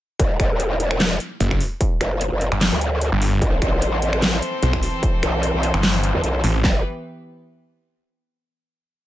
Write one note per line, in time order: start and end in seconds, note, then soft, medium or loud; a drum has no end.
0.20 0.38 E1 loud
0.20 kick loud
0.20 closed hi-hat medium
0.40 1.19 E1 medium
0.40 finger snap soft
0.40 kick loud
0.40 closed hi-hat medium
0.60 closed hi-hat medium
0.80 closed hi-hat medium
0.91 finger snap medium
1.00 snare loud
1.00 clap medium
1.00 closed hi-hat medium
1.20 closed hi-hat medium
1.40 1.59 F#1 loud
1.40 closed hi-hat medium
1.51 finger snap medium
1.51 kick medium
1.61 open hi-hat medium
1.81 kick loud
1.81 closed hi-hat medium
2.01 2.30 F#1 loud
2.01 finger snap medium
2.01 closed hi-hat medium
2.21 closed hi-hat medium
2.32 2.50 F#1 loud
2.41 closed hi-hat medium
2.52 2.70 G1 loud
2.52 finger snap medium
2.61 snare loud
2.61 clap medium
2.61 closed hi-hat medium
2.72 3.10 D2 loud
2.81 closed hi-hat medium
3.01 closed hi-hat medium
3.12 3.40 G1 loud
3.22 open hi-hat medium
3.42 3.60 A1 loud
3.42 6.61 E3 medium
3.42 6.61 C4 medium
3.42 6.61 A4 medium
3.42 6.61 C5 medium
3.42 kick loud
3.42 closed hi-hat medium
3.62 4.41 A1 loud
3.62 finger snap medium
3.62 kick loud
3.62 closed hi-hat medium
3.82 closed hi-hat medium
4.02 closed hi-hat soft
4.13 finger snap medium
4.22 snare loud
4.22 clap loud
4.22 closed hi-hat medium
4.42 closed hi-hat medium
4.63 4.81 B1 loud
4.63 closed hi-hat medium
4.73 finger snap medium
4.73 kick medium
4.83 open hi-hat medium
5.03 kick loud
5.03 closed hi-hat medium
5.23 5.52 B1 loud
5.23 finger snap medium
5.23 closed hi-hat medium
5.43 closed hi-hat medium
5.54 5.72 B1 loud
5.63 closed hi-hat medium
5.74 6.13 G1 loud
5.74 finger snap medium
5.83 snare loud
5.83 clap medium
5.83 closed hi-hat medium
6.03 closed hi-hat medium
6.14 6.22 E2 loud
6.24 6.42 B1 loud
6.24 closed hi-hat medium
6.44 6.62 A1 loud
6.44 open hi-hat medium
6.64 6.83 E1 loud
6.64 6.83 E3 medium
6.64 6.83 B3 medium
6.64 6.83 G4 medium
6.64 6.83 B4 medium
6.64 kick loud
6.64 snare loud
6.64 clap medium